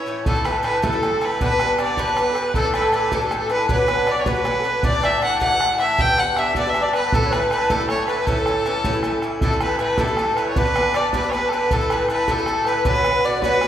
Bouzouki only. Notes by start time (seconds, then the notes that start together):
0.06 A2 E3 C#4 E4
0.26 A2 D3 A3 E4
0.35 D3 A3 E4
0.45 A2 D3 A3 E4
0.62 A2 D3 A3 E4
0.82 A2 D3 A3 E4
0.92 D3 A3 E4
1.03 A2 D3 A3 E4
1.21 A2 D3 A3 E4
1.41 G2 D3 B3 D4
1.50 D3 B3 D4
1.59 G2 D3 B3 D4
1.78 G2 D3 B3 D4
1.98 G2 D3 B3 D4
2.07 D3 B3 D4
2.17 G2 D3 B3 D4
2.36 G2 D3 B3 D4
2.55 A2 E3 A3 D4
2.64 E3 A3 D4
2.74 A2 E3 A3 D4
2.92 A2 E3 A3 D4
3.12 A2 E3 A3 D4
3.21 E3 A3 D4
3.31 A2 E3 A3 D4
3.50 A2 E3 A3 D4
3.69 B2 F#3 C#4 D4
3.78 F#3 C#4 D4
3.88 B2 F#3 C#4 D4
4.07 B2 F#3 C#4 D4
4.26 B2 F#3 C#4 D4
4.34 F#3 C#4 D4
4.44 B2 F#3 C#4 D4
4.64 B2 F#3 C#4 D4
4.83 A2 E3 A3 D4
4.92 E3 A3 D4
5.03 A2 E3 A3 D4
5.21 A2 E3 A3 D4
5.40 A2 E3 A3 D4
5.50 E3 A3 D4
5.59 A2 E3 A3 D4
5.79 A2 E3 A3 D4
5.98 G2 D3 B3 D4
6.08 D3 B3 D4
6.18 G2 D3 B3 D4
6.37 G2 D3 B3 D4
6.56 G2 D3 B3 D4
6.66 D3 B3 D4
6.75 G2 D3 B3 D4
6.94 G2 D3 B3 D4
7.14 A2 D3 A3 E4
7.23 D3 A3 E4
7.32 A2 D3 A3 E4
7.52 A2 D3 A3 E4
7.70 A2 D3 A3 E4
7.80 D3 A3 E4
7.90 A2 D3 A3 E4
8.08 A2 D3 A3 E4
8.27 A2 E3 C#4 E4
8.37 E3 C#4 E4
8.47 A2 E3 C#4 E4
8.66 A2 E3 C#4 E4
8.85 A2 E3 C#4 E4
8.93 E3 C#4 E4
9.04 A2 E3 C#4 E4
9.23 A2 E3 C#4 E4
9.42 A2 D3 A3 E4
9.52 D3 A3 E4
9.61 A2 D3 A3 E4
9.79 A2 D3 A3 E4
9.98 A2 D3 A3 E4
10.07 D3 A3 E4
10.18 A2 D3 A3 E4
10.37 A2 D3 A3 E4
10.56 G2 D3 B3 D4
10.66 D3 B3 D4
10.75 G2 D3 B3 D4
10.94 G2 D3 B3 D4
11.14 G2 D3 B3 D4
11.23 D3 B3 D4
11.33 G2 D3 B3 D4
11.52 G2 D3 B3 D4
11.71 A2 D3 A3 E4
11.81 D3 A3 E4
11.90 A2 D3 A3 E4
12.09 A2 D3 A3 E4
12.28 A2 D3 A3 E4
12.38 D3 A3 E4
12.47 A2 D3 A3 E4
12.66 A2 D3 A3 E4
12.85 B2 D3 C#4 F#4
12.95 D3 C#4 F#4
13.05 B2 D3 C#4 F#4
13.24 B2 D3 C#4 F#4
13.44 B2 D3 C#4 F#4
13.52 D3 C#4 F#4
13.63 B2 D3 C#4 F#4